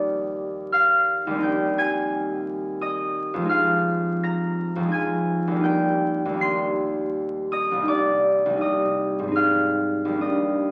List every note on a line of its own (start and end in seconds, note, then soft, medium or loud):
0.00 1.26 D#2 medium
0.00 1.29 G3 medium
0.00 1.42 A#3 medium
0.00 1.38 D#4 medium
0.00 1.47 D5 medium
0.00 2.81 D#5 medium
0.00 1.46 D6 loud
0.00 2.80 D#6 loud
0.72 1.47 F5 medium
0.72 1.92 F6 loud
1.27 3.45 D#2 medium
1.27 3.47 G3 medium
1.35 5.25 C4 medium
1.39 3.44 D#4 medium
1.39 3.53 G6 loud
1.44 3.54 G5 medium
1.78 4.92 G#5 medium
1.78 4.90 G#6 loud
2.81 6.72 D#5 medium
2.81 6.71 D#6 loud
3.34 4.75 F2 medium
3.34 4.79 F3 medium
3.42 4.83 G#3 medium
3.42 4.87 D#4 medium
3.49 5.67 F5 medium
3.49 5.66 F6 loud
4.23 8.14 A#5 medium
4.23 5.42 A#6 loud
4.76 5.58 F2 medium
4.80 5.60 F3 medium
4.80 5.62 G#3 medium
4.88 5.59 D#4 medium
4.88 5.66 G#6 medium
4.94 5.67 G#5 medium
5.47 6.24 D#2 medium
5.51 6.27 G3 medium
5.56 6.32 A#3 medium
5.60 6.36 D#4 medium
5.60 9.54 G6 loud
5.65 9.55 G5 medium
6.25 7.83 D#2 medium
6.25 7.74 G3 medium
6.33 7.79 A#3 medium
6.33 7.82 D#4 medium
6.41 10.25 C6 medium
6.41 10.24 C7 loud
7.52 8.61 D#5 medium
7.52 8.60 D#6 loud
7.72 8.45 C2 medium
7.72 8.48 G3 medium
7.80 8.52 A#3 medium
7.80 8.56 D#4 medium
7.88 9.41 D5 medium
7.88 9.40 D6 loud
8.46 9.32 C2 medium
8.46 9.22 G3 medium
8.53 9.36 A#3 medium
8.57 9.30 D#4 medium
8.61 10.21 D#5 medium
8.61 10.20 D#6 medium
9.19 10.16 G#2 medium
9.19 10.07 G3 medium
9.28 10.20 C4 medium
9.28 10.71 D#4 medium
9.36 10.25 F5 medium
9.36 10.71 F6 medium
10.05 10.71 D#2 medium
10.05 10.71 G3 medium
10.13 10.71 A#3 medium
10.17 10.71 D4 medium
10.21 10.71 D#5 medium
10.21 10.71 D#6 medium